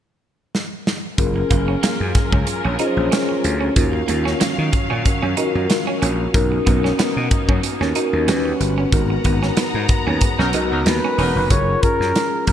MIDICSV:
0, 0, Header, 1, 10, 480
1, 0, Start_track
1, 0, Key_signature, 6, "major"
1, 0, Tempo, 645369
1, 882, Time_signature, 4, 2, 24, 8
1, 9315, End_track
2, 0, Start_track
2, 0, Title_t, "Flugelhorn"
2, 0, Program_c, 0, 56
2, 8085, Note_on_c, 0, 71, 97
2, 8562, Note_on_c, 0, 73, 100
2, 8573, Note_off_c, 0, 71, 0
2, 8797, Note_on_c, 0, 70, 103
2, 8808, Note_off_c, 0, 73, 0
2, 9272, Note_off_c, 0, 70, 0
2, 9276, Note_on_c, 0, 70, 88
2, 9315, Note_off_c, 0, 70, 0
2, 9315, End_track
3, 0, Start_track
3, 0, Title_t, "Tine electric piano"
3, 0, Program_c, 1, 4
3, 875, Note_on_c, 1, 61, 71
3, 879, Note_on_c, 1, 65, 66
3, 882, Note_on_c, 1, 68, 64
3, 884, Note_on_c, 1, 70, 83
3, 1024, Control_c, 1, 64, 127
3, 1464, Note_off_c, 1, 61, 0
3, 1465, Note_off_c, 1, 65, 0
3, 1467, Note_off_c, 1, 68, 0
3, 1468, Note_off_c, 1, 70, 0
3, 2076, Note_on_c, 1, 61, 75
3, 2078, Note_on_c, 1, 65, 70
3, 2082, Note_on_c, 1, 68, 75
3, 2085, Note_on_c, 1, 72, 76
3, 2133, Note_on_c, 1, 73, 80
3, 2135, Note_off_c, 1, 72, 0
3, 2516, Note_off_c, 1, 61, 0
3, 2517, Note_off_c, 1, 65, 0
3, 2518, Note_off_c, 1, 68, 0
3, 2544, Note_off_c, 1, 73, 0
3, 2795, Note_on_c, 1, 61, 79
3, 2797, Note_on_c, 1, 65, 67
3, 2799, Note_on_c, 1, 66, 67
3, 2803, Note_on_c, 1, 70, 88
3, 2813, Control_c, 1, 64, 0
3, 2935, Control_c, 1, 64, 127
3, 3383, Note_off_c, 1, 61, 0
3, 3384, Note_off_c, 1, 65, 0
3, 3385, Note_off_c, 1, 66, 0
3, 3387, Note_off_c, 1, 70, 0
3, 3995, Note_on_c, 1, 61, 78
3, 3998, Note_on_c, 1, 65, 73
3, 4002, Note_on_c, 1, 66, 84
3, 4003, Note_on_c, 1, 70, 93
3, 4435, Note_off_c, 1, 61, 0
3, 4436, Note_off_c, 1, 65, 0
3, 4438, Note_off_c, 1, 66, 0
3, 4439, Note_off_c, 1, 70, 0
3, 4713, Note_on_c, 1, 61, 86
3, 4716, Note_on_c, 1, 63, 66
3, 4719, Note_on_c, 1, 66, 73
3, 4721, Note_on_c, 1, 70, 97
3, 4732, Control_c, 1, 64, 0
3, 4844, Control_c, 1, 64, 127
3, 5302, Note_off_c, 1, 61, 0
3, 5303, Note_off_c, 1, 63, 0
3, 5305, Note_off_c, 1, 66, 0
3, 5306, Note_off_c, 1, 70, 0
3, 5910, Note_on_c, 1, 61, 79
3, 5913, Note_on_c, 1, 63, 77
3, 5917, Note_on_c, 1, 66, 77
3, 5919, Note_on_c, 1, 70, 84
3, 6143, Note_off_c, 1, 61, 0
3, 6146, Note_off_c, 1, 66, 0
3, 6152, Note_on_c, 1, 61, 86
3, 6155, Note_on_c, 1, 66, 71
3, 6156, Note_off_c, 1, 63, 0
3, 6157, Note_on_c, 1, 67, 74
3, 6159, Note_off_c, 1, 70, 0
3, 6159, Note_on_c, 1, 71, 80
3, 6169, Control_c, 1, 64, 0
3, 6302, Control_c, 1, 64, 127
3, 6547, Note_off_c, 1, 61, 0
3, 6549, Note_off_c, 1, 66, 0
3, 6550, Note_off_c, 1, 67, 0
3, 6551, Note_off_c, 1, 71, 0
3, 6636, Note_on_c, 1, 59, 75
3, 6639, Note_on_c, 1, 63, 74
3, 6640, Note_on_c, 1, 66, 73
3, 6643, Note_on_c, 1, 70, 95
3, 6651, Control_c, 1, 64, 0
3, 6797, Control_c, 1, 64, 127
3, 7223, Note_off_c, 1, 59, 0
3, 7224, Note_off_c, 1, 63, 0
3, 7225, Note_off_c, 1, 66, 0
3, 7226, Note_off_c, 1, 70, 0
3, 7834, Note_on_c, 1, 59, 72
3, 7837, Note_on_c, 1, 63, 75
3, 7840, Note_on_c, 1, 66, 83
3, 7844, Note_on_c, 1, 70, 96
3, 8273, Note_off_c, 1, 59, 0
3, 8275, Note_off_c, 1, 63, 0
3, 8276, Note_off_c, 1, 66, 0
3, 8278, Note_off_c, 1, 70, 0
3, 8552, Note_on_c, 1, 61, 57
3, 8555, Note_on_c, 1, 65, 60
3, 8559, Note_on_c, 1, 68, 61
3, 8561, Note_on_c, 1, 70, 66
3, 8568, Control_c, 1, 64, 0
3, 8705, Control_c, 1, 64, 127
3, 8707, Note_off_c, 1, 61, 0
3, 8709, Note_off_c, 1, 65, 0
3, 8711, Note_off_c, 1, 68, 0
3, 8712, Note_off_c, 1, 70, 0
3, 8795, Note_on_c, 1, 61, 65
3, 8797, Note_on_c, 1, 65, 55
3, 8801, Note_on_c, 1, 68, 62
3, 8802, Note_on_c, 1, 70, 67
3, 9315, Note_off_c, 1, 61, 0
3, 9315, Note_off_c, 1, 65, 0
3, 9315, Note_off_c, 1, 68, 0
3, 9315, Note_off_c, 1, 70, 0
3, 9315, End_track
4, 0, Start_track
4, 0, Title_t, "Horn section"
4, 0, Program_c, 2, 61
4, 7728, Note_on_c, 2, 54, 89
4, 7728, Note_on_c, 2, 63, 86
4, 7728, Note_on_c, 2, 70, 98
4, 7799, Note_off_c, 2, 54, 0
4, 7799, Note_off_c, 2, 63, 0
4, 7799, Note_off_c, 2, 70, 0
4, 7965, Note_on_c, 2, 54, 83
4, 7965, Note_on_c, 2, 63, 77
4, 7965, Note_on_c, 2, 70, 88
4, 8036, Note_off_c, 2, 54, 0
4, 8037, Note_off_c, 2, 63, 0
4, 8037, Note_off_c, 2, 70, 0
4, 8317, Note_on_c, 2, 54, 78
4, 8318, Note_on_c, 2, 63, 79
4, 8318, Note_on_c, 2, 70, 88
4, 8471, Note_off_c, 2, 54, 0
4, 8471, Note_off_c, 2, 63, 0
4, 8471, Note_off_c, 2, 70, 0
4, 9315, End_track
5, 0, Start_track
5, 0, Title_t, "Clean electric guitar"
5, 0, Program_c, 3, 27
5, 1120, Note_on_c, 3, 58, 77
5, 1214, Note_off_c, 3, 58, 0
5, 1249, Note_on_c, 3, 61, 57
5, 1330, Note_off_c, 3, 61, 0
5, 1360, Note_on_c, 3, 58, 92
5, 1455, Note_off_c, 3, 58, 0
5, 1729, Note_on_c, 3, 61, 60
5, 1810, Note_off_c, 3, 61, 0
5, 1968, Note_on_c, 3, 61, 68
5, 2049, Note_off_c, 3, 61, 0
5, 2079, Note_on_c, 3, 63, 71
5, 2174, Note_off_c, 3, 63, 0
5, 2317, Note_on_c, 3, 61, 69
5, 2413, Note_off_c, 3, 61, 0
5, 2681, Note_on_c, 3, 61, 67
5, 2765, Note_off_c, 3, 61, 0
5, 3034, Note_on_c, 3, 58, 67
5, 3131, Note_off_c, 3, 58, 0
5, 3164, Note_on_c, 3, 61, 77
5, 3247, Note_off_c, 3, 61, 0
5, 3274, Note_on_c, 3, 58, 77
5, 3370, Note_off_c, 3, 58, 0
5, 3645, Note_on_c, 3, 61, 70
5, 3727, Note_off_c, 3, 61, 0
5, 3886, Note_on_c, 3, 61, 75
5, 3968, Note_off_c, 3, 61, 0
5, 3996, Note_on_c, 3, 63, 68
5, 4092, Note_off_c, 3, 63, 0
5, 4368, Note_on_c, 3, 61, 69
5, 4449, Note_off_c, 3, 61, 0
5, 4476, Note_on_c, 3, 61, 77
5, 4572, Note_off_c, 3, 61, 0
5, 4957, Note_on_c, 3, 59, 76
5, 5052, Note_off_c, 3, 59, 0
5, 5089, Note_on_c, 3, 61, 67
5, 5170, Note_off_c, 3, 61, 0
5, 5198, Note_on_c, 3, 59, 85
5, 5293, Note_off_c, 3, 59, 0
5, 5571, Note_on_c, 3, 61, 56
5, 5651, Note_off_c, 3, 61, 0
5, 5809, Note_on_c, 3, 61, 68
5, 5889, Note_off_c, 3, 61, 0
5, 5919, Note_on_c, 3, 63, 80
5, 6013, Note_off_c, 3, 63, 0
5, 6159, Note_on_c, 3, 61, 74
5, 6254, Note_off_c, 3, 61, 0
5, 6528, Note_on_c, 3, 61, 66
5, 6609, Note_off_c, 3, 61, 0
5, 6884, Note_on_c, 3, 59, 68
5, 6977, Note_off_c, 3, 59, 0
5, 7011, Note_on_c, 3, 61, 75
5, 7090, Note_off_c, 3, 61, 0
5, 7120, Note_on_c, 3, 59, 84
5, 7214, Note_off_c, 3, 59, 0
5, 7488, Note_on_c, 3, 61, 63
5, 7569, Note_off_c, 3, 61, 0
5, 7730, Note_on_c, 3, 61, 80
5, 7809, Note_off_c, 3, 61, 0
5, 7841, Note_on_c, 3, 63, 70
5, 7934, Note_off_c, 3, 63, 0
5, 8215, Note_on_c, 3, 61, 69
5, 8293, Note_off_c, 3, 61, 0
5, 8322, Note_on_c, 3, 61, 78
5, 8415, Note_off_c, 3, 61, 0
5, 9315, End_track
6, 0, Start_track
6, 0, Title_t, "String section"
6, 0, Program_c, 4, 48
6, 882, Note_on_c, 4, 54, 72
6, 884, Note_on_c, 4, 68, 65
6, 886, Note_on_c, 4, 65, 66
6, 887, Note_on_c, 4, 70, 75
6, 2783, Note_off_c, 4, 54, 0
6, 2783, Note_off_c, 4, 68, 0
6, 2784, Note_off_c, 4, 65, 0
6, 2785, Note_off_c, 4, 70, 0
6, 2802, Note_on_c, 4, 77, 72
6, 2803, Note_on_c, 4, 54, 78
6, 2804, Note_on_c, 4, 51, 75
6, 2805, Note_on_c, 4, 61, 75
6, 4702, Note_off_c, 4, 77, 0
6, 4703, Note_off_c, 4, 51, 0
6, 4703, Note_off_c, 4, 54, 0
6, 4703, Note_off_c, 4, 61, 0
6, 4719, Note_on_c, 4, 58, 77
6, 4719, Note_on_c, 4, 59, 67
6, 4721, Note_on_c, 4, 63, 83
6, 6145, Note_off_c, 4, 58, 0
6, 6146, Note_off_c, 4, 63, 0
6, 6152, Note_on_c, 4, 51, 67
6, 6153, Note_on_c, 4, 55, 69
6, 6153, Note_on_c, 4, 61, 62
6, 6154, Note_on_c, 4, 78, 60
6, 6620, Note_off_c, 4, 59, 0
6, 6631, Note_off_c, 4, 51, 0
6, 6631, Note_on_c, 4, 56, 75
6, 6631, Note_on_c, 4, 82, 72
6, 6632, Note_off_c, 4, 55, 0
6, 6632, Note_off_c, 4, 61, 0
6, 6634, Note_on_c, 4, 59, 84
6, 8532, Note_off_c, 4, 78, 0
6, 8535, Note_off_c, 4, 56, 0
6, 8535, Note_off_c, 4, 82, 0
6, 8537, Note_off_c, 4, 59, 0
6, 9315, End_track
7, 0, Start_track
7, 0, Title_t, "Slap bass"
7, 0, Program_c, 5, 36
7, 879, Note_on_c, 5, 30, 91
7, 1059, Note_off_c, 5, 30, 0
7, 1123, Note_on_c, 5, 30, 90
7, 1301, Note_off_c, 5, 30, 0
7, 1490, Note_on_c, 5, 42, 83
7, 1573, Note_off_c, 5, 42, 0
7, 1728, Note_on_c, 5, 37, 81
7, 1812, Note_off_c, 5, 37, 0
7, 1970, Note_on_c, 5, 34, 78
7, 2052, Note_off_c, 5, 34, 0
7, 2207, Note_on_c, 5, 34, 91
7, 2291, Note_off_c, 5, 34, 0
7, 2561, Note_on_c, 5, 38, 96
7, 2740, Note_off_c, 5, 38, 0
7, 2800, Note_on_c, 5, 39, 91
7, 2979, Note_off_c, 5, 39, 0
7, 3041, Note_on_c, 5, 39, 88
7, 3220, Note_off_c, 5, 39, 0
7, 3409, Note_on_c, 5, 51, 75
7, 3492, Note_off_c, 5, 51, 0
7, 3647, Note_on_c, 5, 46, 73
7, 3730, Note_off_c, 5, 46, 0
7, 3889, Note_on_c, 5, 42, 80
7, 3972, Note_off_c, 5, 42, 0
7, 4130, Note_on_c, 5, 42, 92
7, 4212, Note_off_c, 5, 42, 0
7, 4479, Note_on_c, 5, 34, 89
7, 4658, Note_off_c, 5, 34, 0
7, 4718, Note_on_c, 5, 35, 95
7, 4897, Note_off_c, 5, 35, 0
7, 4959, Note_on_c, 5, 35, 89
7, 5138, Note_off_c, 5, 35, 0
7, 5329, Note_on_c, 5, 47, 87
7, 5412, Note_off_c, 5, 47, 0
7, 5567, Note_on_c, 5, 42, 77
7, 5650, Note_off_c, 5, 42, 0
7, 5806, Note_on_c, 5, 39, 98
7, 5890, Note_off_c, 5, 39, 0
7, 6047, Note_on_c, 5, 39, 88
7, 6130, Note_off_c, 5, 39, 0
7, 6156, Note_on_c, 5, 39, 98
7, 6336, Note_off_c, 5, 39, 0
7, 6397, Note_on_c, 5, 31, 77
7, 6577, Note_off_c, 5, 31, 0
7, 6638, Note_on_c, 5, 32, 104
7, 6817, Note_off_c, 5, 32, 0
7, 6879, Note_on_c, 5, 32, 94
7, 7058, Note_off_c, 5, 32, 0
7, 7246, Note_on_c, 5, 44, 88
7, 7330, Note_off_c, 5, 44, 0
7, 7491, Note_on_c, 5, 39, 75
7, 7572, Note_off_c, 5, 39, 0
7, 7728, Note_on_c, 5, 35, 81
7, 7811, Note_off_c, 5, 35, 0
7, 7838, Note_on_c, 5, 35, 89
7, 7969, Note_off_c, 5, 35, 0
7, 7969, Note_on_c, 5, 37, 85
7, 8051, Note_off_c, 5, 37, 0
7, 8076, Note_on_c, 5, 39, 91
7, 8174, Note_off_c, 5, 39, 0
7, 8315, Note_on_c, 5, 28, 85
7, 8413, Note_off_c, 5, 28, 0
7, 8447, Note_on_c, 5, 29, 84
7, 8530, Note_off_c, 5, 29, 0
7, 8558, Note_on_c, 5, 30, 78
7, 8737, Note_off_c, 5, 30, 0
7, 8925, Note_on_c, 5, 42, 85
7, 9009, Note_off_c, 5, 42, 0
7, 9278, Note_on_c, 5, 34, 82
7, 9315, Note_off_c, 5, 34, 0
7, 9315, End_track
8, 0, Start_track
8, 0, Title_t, "Muted clean electric guitar strokes"
8, 1010, Note_on_c, 9, 29, 40
8, 1084, Note_off_c, 9, 29, 0
8, 1598, Note_on_c, 9, 29, 38
8, 1673, Note_off_c, 9, 29, 0
8, 1840, Note_on_c, 9, 29, 37
8, 1914, Note_off_c, 9, 29, 0
8, 2446, Note_on_c, 9, 29, 44
8, 2520, Note_off_c, 9, 29, 0
8, 2924, Note_on_c, 9, 29, 42
8, 2999, Note_off_c, 9, 29, 0
8, 3515, Note_on_c, 9, 29, 41
8, 3589, Note_off_c, 9, 29, 0
8, 3755, Note_on_c, 9, 29, 37
8, 3830, Note_off_c, 9, 29, 0
8, 4236, Note_on_c, 9, 29, 41
8, 4311, Note_off_c, 9, 29, 0
8, 4848, Note_on_c, 9, 29, 40
8, 4922, Note_off_c, 9, 29, 0
8, 5440, Note_on_c, 9, 29, 43
8, 5514, Note_off_c, 9, 29, 0
8, 5681, Note_on_c, 9, 29, 39
8, 5755, Note_off_c, 9, 29, 0
8, 6288, Note_on_c, 9, 29, 42
8, 6363, Note_off_c, 9, 29, 0
8, 6770, Note_on_c, 9, 29, 42
8, 6845, Note_off_c, 9, 29, 0
8, 7360, Note_on_c, 9, 29, 39
8, 7434, Note_off_c, 9, 29, 0
8, 7602, Note_on_c, 9, 29, 39
8, 7676, Note_off_c, 9, 29, 0
8, 8083, Note_on_c, 9, 29, 43
8, 8157, Note_off_c, 9, 29, 0
8, 9315, End_track
9, 0, Start_track
9, 0, Title_t, "Muted slap bass strokes"
9, 1360, Note_on_c, 9, 29, 42
9, 1434, Note_off_c, 9, 29, 0
9, 3283, Note_on_c, 9, 29, 45
9, 3358, Note_off_c, 9, 29, 0
9, 5199, Note_on_c, 9, 29, 44
9, 5273, Note_off_c, 9, 29, 0
9, 9315, End_track
10, 0, Start_track
10, 0, Title_t, "Drums"
10, 407, Note_on_c, 9, 38, 68
10, 481, Note_off_c, 9, 38, 0
10, 648, Note_on_c, 9, 38, 85
10, 722, Note_off_c, 9, 38, 0
10, 880, Note_on_c, 9, 36, 111
10, 880, Note_on_c, 9, 42, 77
10, 954, Note_off_c, 9, 36, 0
10, 955, Note_off_c, 9, 42, 0
10, 1120, Note_on_c, 9, 42, 67
10, 1121, Note_on_c, 9, 36, 82
10, 1194, Note_off_c, 9, 42, 0
10, 1196, Note_off_c, 9, 36, 0
10, 1363, Note_on_c, 9, 42, 90
10, 1367, Note_on_c, 9, 38, 110
10, 1437, Note_off_c, 9, 42, 0
10, 1441, Note_off_c, 9, 38, 0
10, 1597, Note_on_c, 9, 42, 64
10, 1600, Note_on_c, 9, 36, 95
10, 1606, Note_on_c, 9, 38, 35
10, 1672, Note_off_c, 9, 42, 0
10, 1674, Note_off_c, 9, 36, 0
10, 1680, Note_off_c, 9, 38, 0
10, 1729, Note_on_c, 9, 36, 98
10, 1803, Note_off_c, 9, 36, 0
10, 1835, Note_on_c, 9, 42, 79
10, 1910, Note_off_c, 9, 42, 0
10, 2074, Note_on_c, 9, 42, 69
10, 2148, Note_off_c, 9, 42, 0
10, 2322, Note_on_c, 9, 42, 85
10, 2328, Note_on_c, 9, 38, 110
10, 2396, Note_off_c, 9, 42, 0
10, 2403, Note_off_c, 9, 38, 0
10, 2561, Note_on_c, 9, 42, 73
10, 2635, Note_off_c, 9, 42, 0
10, 2797, Note_on_c, 9, 42, 86
10, 2799, Note_on_c, 9, 36, 107
10, 2872, Note_off_c, 9, 42, 0
10, 2874, Note_off_c, 9, 36, 0
10, 3037, Note_on_c, 9, 42, 66
10, 3112, Note_off_c, 9, 42, 0
10, 3176, Note_on_c, 9, 38, 32
10, 3250, Note_off_c, 9, 38, 0
10, 3277, Note_on_c, 9, 42, 101
10, 3281, Note_on_c, 9, 38, 116
10, 3352, Note_off_c, 9, 42, 0
10, 3356, Note_off_c, 9, 38, 0
10, 3516, Note_on_c, 9, 42, 61
10, 3519, Note_on_c, 9, 36, 98
10, 3591, Note_off_c, 9, 42, 0
10, 3594, Note_off_c, 9, 36, 0
10, 3759, Note_on_c, 9, 42, 80
10, 3761, Note_on_c, 9, 36, 89
10, 3833, Note_off_c, 9, 42, 0
10, 3835, Note_off_c, 9, 36, 0
10, 3994, Note_on_c, 9, 42, 67
10, 4069, Note_off_c, 9, 42, 0
10, 4237, Note_on_c, 9, 42, 89
10, 4244, Note_on_c, 9, 38, 120
10, 4312, Note_off_c, 9, 42, 0
10, 4318, Note_off_c, 9, 38, 0
10, 4481, Note_on_c, 9, 42, 77
10, 4555, Note_off_c, 9, 42, 0
10, 4718, Note_on_c, 9, 36, 116
10, 4718, Note_on_c, 9, 42, 77
10, 4792, Note_off_c, 9, 36, 0
10, 4792, Note_off_c, 9, 42, 0
10, 4958, Note_on_c, 9, 42, 66
10, 4960, Note_on_c, 9, 36, 78
10, 5033, Note_off_c, 9, 42, 0
10, 5035, Note_off_c, 9, 36, 0
10, 5097, Note_on_c, 9, 38, 34
10, 5171, Note_off_c, 9, 38, 0
10, 5200, Note_on_c, 9, 42, 87
10, 5204, Note_on_c, 9, 38, 108
10, 5274, Note_off_c, 9, 42, 0
10, 5278, Note_off_c, 9, 38, 0
10, 5437, Note_on_c, 9, 42, 65
10, 5439, Note_on_c, 9, 36, 102
10, 5511, Note_off_c, 9, 42, 0
10, 5513, Note_off_c, 9, 36, 0
10, 5568, Note_on_c, 9, 36, 97
10, 5642, Note_off_c, 9, 36, 0
10, 5678, Note_on_c, 9, 42, 85
10, 5753, Note_off_c, 9, 42, 0
10, 5815, Note_on_c, 9, 38, 37
10, 5889, Note_off_c, 9, 38, 0
10, 5915, Note_on_c, 9, 42, 70
10, 5990, Note_off_c, 9, 42, 0
10, 6159, Note_on_c, 9, 42, 85
10, 6165, Note_on_c, 9, 38, 118
10, 6233, Note_off_c, 9, 42, 0
10, 6239, Note_off_c, 9, 38, 0
10, 6401, Note_on_c, 9, 42, 82
10, 6476, Note_off_c, 9, 42, 0
10, 6638, Note_on_c, 9, 36, 110
10, 6639, Note_on_c, 9, 42, 85
10, 6712, Note_off_c, 9, 36, 0
10, 6713, Note_off_c, 9, 42, 0
10, 6875, Note_on_c, 9, 42, 62
10, 6879, Note_on_c, 9, 36, 77
10, 6950, Note_off_c, 9, 42, 0
10, 6954, Note_off_c, 9, 36, 0
10, 7011, Note_on_c, 9, 38, 35
10, 7085, Note_off_c, 9, 38, 0
10, 7116, Note_on_c, 9, 42, 88
10, 7120, Note_on_c, 9, 38, 119
10, 7190, Note_off_c, 9, 42, 0
10, 7194, Note_off_c, 9, 38, 0
10, 7353, Note_on_c, 9, 42, 64
10, 7357, Note_on_c, 9, 36, 103
10, 7427, Note_off_c, 9, 42, 0
10, 7431, Note_off_c, 9, 36, 0
10, 7592, Note_on_c, 9, 42, 87
10, 7598, Note_on_c, 9, 36, 89
10, 7667, Note_off_c, 9, 42, 0
10, 7672, Note_off_c, 9, 36, 0
10, 7733, Note_on_c, 9, 38, 35
10, 7807, Note_off_c, 9, 38, 0
10, 7832, Note_on_c, 9, 42, 75
10, 7906, Note_off_c, 9, 42, 0
10, 8077, Note_on_c, 9, 42, 88
10, 8083, Note_on_c, 9, 38, 111
10, 8151, Note_off_c, 9, 42, 0
10, 8158, Note_off_c, 9, 38, 0
10, 8319, Note_on_c, 9, 46, 66
10, 8394, Note_off_c, 9, 46, 0
10, 8556, Note_on_c, 9, 42, 79
10, 8557, Note_on_c, 9, 36, 92
10, 8630, Note_off_c, 9, 42, 0
10, 8631, Note_off_c, 9, 36, 0
10, 8797, Note_on_c, 9, 42, 61
10, 8800, Note_on_c, 9, 36, 78
10, 8871, Note_off_c, 9, 42, 0
10, 8874, Note_off_c, 9, 36, 0
10, 8936, Note_on_c, 9, 38, 32
10, 9010, Note_off_c, 9, 38, 0
10, 9041, Note_on_c, 9, 42, 87
10, 9045, Note_on_c, 9, 38, 100
10, 9115, Note_off_c, 9, 42, 0
10, 9119, Note_off_c, 9, 38, 0
10, 9276, Note_on_c, 9, 42, 61
10, 9279, Note_on_c, 9, 36, 79
10, 9315, Note_off_c, 9, 36, 0
10, 9315, Note_off_c, 9, 42, 0
10, 9315, End_track
0, 0, End_of_file